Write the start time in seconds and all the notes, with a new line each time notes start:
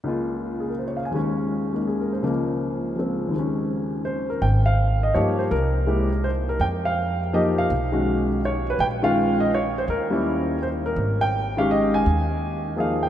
0.04 C#2 C#3 A#3
0.08 F4
0.60 G#4
0.70 A#4
0.79 C5
0.88 C#5
0.97 F5
1.05 G#5
1.11 D#2 D#3 G#3
1.16 C#4
1.73 G#3 A#3 D#4
1.87 G#4
2.01 A#4
2.13 C5
2.22 C#2 C#3 F3 A#3
2.96 F3 G#3 C4
3.28 D#2 D#3
3.35 G#3
3.39 C#4
4.05 C5
4.30 A#4
4.42 G#1 G5
4.66 F5
5.03 D#5
5.14 G2 F3 A#3 D#4 G4 C#5
5.39 C5
5.51 C2 A#4
5.87 G#3 A#3 E4 G4
6.24 C5
6.49 A#4
6.60 F2 G5
6.85 F5
7.33 F3 A#3 D#4 G4 D#5
7.58 F5
7.70 B1
7.92 D#3 G#3 C#4 F#4
8.45 C#5
8.70 B4
8.79 A#1 G5
9.02 D#3 G#3 C#4 F4 F5
9.40 D#5
9.54 C#5
9.78 C5
9.88 D#2 A#4
10.10 G3 A#3 C#4 E4
10.63 C5
10.86 A#4
10.96 G#1
11.21 G5
11.57 D#3 G#3 C#4 G4 F5
11.71 D#5
11.94 G#5
12.06 D#2
12.76 F3 A#3 D#4 G#4 F5
13.03 G5